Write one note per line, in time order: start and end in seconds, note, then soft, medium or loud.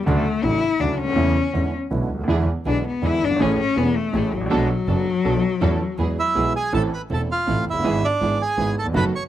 0.06 0.23 D2 medium
0.06 0.23 C#3 medium
0.06 0.23 D3 medium
0.06 0.23 F#3 medium
0.06 0.45 A3 medium
0.06 0.23 A3 medium
0.06 0.23 D4 medium
0.43 0.59 A1 medium
0.43 0.60 A1 medium
0.43 0.59 A2 medium
0.43 0.59 C#3 soft
0.43 0.59 F#3 soft
0.43 0.59 A3 soft
0.43 0.60 D4 soft
0.43 0.82 E4 loud
0.80 0.96 D2 medium
0.80 0.97 D2 medium
0.80 0.96 C#3 medium
0.80 0.96 D3 medium
0.80 0.96 F#3 soft
0.80 0.96 A3 soft
0.80 0.93 D4 medium
0.80 0.96 D4 medium
0.93 1.00 D4 medium
0.98 1.18 D2 soft
0.98 1.73 C#4 loud
1.04 1.09 C#2 soft
1.09 1.14 D2 medium
1.13 1.18 D#2 medium
1.13 1.33 E2 medium
1.13 1.33 C#3 medium
1.13 1.33 E3 medium
1.13 1.33 A3 medium
1.13 1.33 E4 medium
1.18 1.34 E2 medium
1.53 1.70 E2 medium
1.53 1.71 E2 medium
1.53 1.70 D3 soft
1.53 1.70 E3 medium
1.53 1.70 G#3 soft
1.53 1.70 B3 soft
1.53 1.70 E4 soft
1.91 2.07 B1 medium
1.91 2.08 B1 medium
1.91 2.07 B2 soft
1.91 2.07 D3 soft
1.91 2.07 G#3 soft
1.91 2.07 B3 soft
1.91 2.07 E4 soft
2.10 2.28 D2 soft
2.14 2.20 C#2 soft
2.19 2.24 D2 medium
2.24 2.29 D#2 medium
2.24 2.44 D3 medium
2.24 2.44 E3 medium
2.24 2.44 G#3 medium
2.24 2.44 B3 medium
2.28 2.44 E2 medium
2.28 2.45 E2 medium
2.28 2.45 D4 medium
2.28 2.45 E4 medium
2.28 2.45 G#4 medium
2.65 2.82 B1 medium
2.65 2.82 B2 soft
2.65 2.82 D3 soft
2.65 2.82 G#3 soft
2.65 2.82 B3 soft
2.65 2.82 D4 soft
2.65 2.84 D4 medium
2.65 2.82 E4 soft
2.65 2.82 G#4 soft
2.88 3.07 B3 medium
3.02 3.19 E2 medium
3.02 3.18 D3 soft
3.02 3.19 E3 medium
3.02 3.19 G#3 soft
3.02 3.19 B3 soft
3.02 3.19 D4 soft
3.02 3.19 E4 medium
3.02 3.19 E4 soft
3.02 3.19 G#4 medium
3.06 3.26 E4 medium
3.22 3.31 F#1 medium
3.22 3.39 G1 soft
3.22 3.43 D4 medium
3.31 3.36 G1 medium
3.36 3.41 G#1 medium
3.36 3.55 E3 medium
3.36 3.56 A3 medium
3.40 3.56 A1 medium
3.40 3.56 A2 medium
3.40 3.56 A3 medium
3.40 3.56 C#4 medium
3.40 3.58 C#4 medium
3.40 3.56 G#4 medium
3.59 3.79 C#4 loud
3.76 3.92 E1 medium
3.76 3.93 E1 medium
3.76 3.92 E2 medium
3.76 3.92 E3 soft
3.76 3.93 A3 soft
3.76 3.97 B3 medium
3.76 3.92 C#4 soft
3.76 3.93 C#4 soft
3.76 3.93 G#4 medium
3.96 4.34 A3 medium
4.13 4.29 A1 medium
4.13 4.30 A1 medium
4.13 4.30 A2 medium
4.13 4.29 E3 medium
4.13 4.29 A3 soft
4.13 4.30 A3 soft
4.13 4.29 C#4 soft
4.13 4.30 C#4 soft
4.13 4.29 G#4 medium
4.13 4.30 G#4 medium
4.32 4.51 A1 medium
4.32 4.50 F#3 medium
4.37 4.42 G#1 medium
4.37 4.46 A1 medium
4.46 4.51 A#1 medium
4.50 4.67 B1 medium
4.50 4.67 B2 medium
4.50 4.66 F#3 medium
4.50 4.70 G#3 medium
4.50 4.66 B3 medium
4.50 4.67 B3 medium
4.50 4.67 D4 medium
4.50 4.67 A4 medium
4.69 6.35 F#3 loud
4.88 5.04 F#1 medium
4.88 5.04 F#2 medium
4.88 5.04 F#3 soft
4.88 5.03 B3 soft
4.88 5.04 B3 soft
4.88 5.03 D4 soft
4.88 5.04 D4 soft
4.88 5.04 A4 medium
5.24 5.40 B1 medium
5.24 5.41 B1 medium
5.24 5.40 B2 medium
5.24 5.40 F#3 soft
5.24 5.40 B3 soft
5.24 5.40 B3 medium
5.24 5.40 D4 soft
5.24 5.40 A4 medium
5.24 5.41 A4 medium
5.61 5.77 E2 medium
5.61 5.77 E3 medium
5.61 5.77 A3 medium
5.61 5.77 C#4 medium
5.61 5.77 E4 medium
5.61 5.77 A4 medium
5.98 6.14 E2 medium
5.98 6.14 E3 soft
5.98 6.14 G#3 soft
5.98 6.14 B3 soft
5.98 6.15 B3 soft
5.98 6.14 E4 soft
5.98 6.14 G#4 medium
5.98 6.15 G#4 soft
6.19 6.53 E4 medium
6.19 6.53 E5 medium
6.35 6.51 B1 medium
6.35 6.52 B1 medium
6.35 6.51 B2 medium
6.35 6.51 E3 soft
6.35 6.51 G#3 soft
6.35 6.51 B3 soft
6.35 6.52 B3 soft
6.35 6.52 E4 soft
6.35 6.51 G#4 medium
6.35 6.52 G#4 soft
6.56 6.73 G#4 medium
6.56 6.73 G#5 medium
6.73 6.89 A1 medium
6.73 6.89 A2 medium
6.73 6.89 E3 medium
6.73 6.89 A3 medium
6.73 6.89 C4 medium
6.73 6.89 E4 medium
6.73 6.89 A4 medium
6.73 6.83 A4 medium
6.73 6.82 A5 medium
6.94 7.02 B4 medium
6.94 7.02 B5 medium
7.10 7.26 E1 soft
7.10 7.26 E1 medium
7.10 7.26 E2 soft
7.10 7.26 E3 soft
7.10 7.26 A3 soft
7.10 7.26 C4 soft
7.10 7.26 E4 soft
7.10 7.26 A4 soft
7.10 7.21 A5 medium
7.14 7.22 A4 medium
7.31 7.65 F4 medium
7.31 7.65 F5 medium
7.47 7.63 A1 medium
7.47 7.64 A1 medium
7.47 7.63 A2 soft
7.47 7.63 E3 soft
7.47 7.63 A3 soft
7.47 7.63 C4 soft
7.47 7.64 C4 soft
7.47 7.64 E4 soft
7.47 7.63 A4 soft
7.47 7.64 A4 soft
7.67 7.75 F1 soft
7.67 7.84 F#1 soft
7.67 8.03 E4 medium
7.67 8.06 E5 medium
7.74 7.79 F#1 medium
7.79 7.84 G1 medium
7.84 8.00 G#1 medium
7.84 8.00 G#2 medium
7.84 8.00 E3 medium
7.84 8.00 G#3 medium
7.84 8.00 B3 medium
7.84 8.00 E4 medium
7.84 8.00 G#4 medium
8.05 8.38 D4 medium
8.05 8.42 D5 medium
8.21 8.37 G#1 medium
8.21 8.37 G#2 soft
8.21 8.37 E3 soft
8.21 8.37 G#3 soft
8.21 8.37 B3 soft
8.21 8.37 E4 soft
8.21 8.37 G#4 soft
8.21 8.37 G#4 medium
8.42 8.75 G#4 medium
8.42 8.75 G#5 medium
8.57 8.73 G#1 medium
8.57 8.74 G#1 medium
8.57 8.73 G#2 soft
8.57 8.73 E3 soft
8.57 8.73 G#3 soft
8.57 8.74 B3 soft
8.57 8.74 E4 soft
8.57 8.74 G#4 medium
8.79 8.86 D#2 soft
8.79 8.86 A4 medium
8.79 8.87 A5 medium
8.86 8.90 E2 medium
8.86 8.95 F2 medium
8.94 9.11 F#1 medium
8.94 9.10 F#2 medium
8.94 9.10 D#3 medium
8.94 9.10 F#3 medium
8.94 9.10 A3 medium
8.94 9.10 B3 medium
8.94 9.11 B3 medium
8.94 9.11 D#4 medium
8.94 9.10 F#4 medium
8.94 9.11 A4 medium
8.94 9.04 B4 medium
8.94 9.05 B5 loud
9.16 9.23 C#5 medium
9.16 9.23 C#6 medium